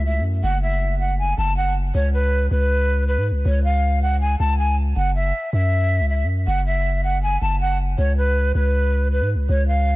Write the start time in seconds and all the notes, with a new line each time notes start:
Already playing: C#2 A3 E4 F#4
0.06 E5
0.20 F#2
0.43 F#1 F#5
0.63 E5
1.00 F#5
1.19 G#5
1.38 F#1 A5
1.57 F#5
1.94 C#2 C#5
2.14 B4
2.51 C#2 B4
3.08 B4
3.17 G#2
3.31 C#2
3.45 C#2 C#5
3.64 F5
4.02 F#5
4.21 G#5
4.39 C#2 A5
4.59 G#5
4.96 F#1 F#5
5.15 E5
5.53 F#2 E5
6.00 C#2
6.10 E5
6.24 F#2
6.47 F#1 F#5
6.66 E5
7.04 F#5
7.23 G#5
7.42 F#1 A5
7.60 F#5
7.98 C#2 C#5
8.17 B4
8.55 C#2 B4
9.12 B4
9.21 G#2
9.35 C#2
9.49 C#2 C#5
9.68 F5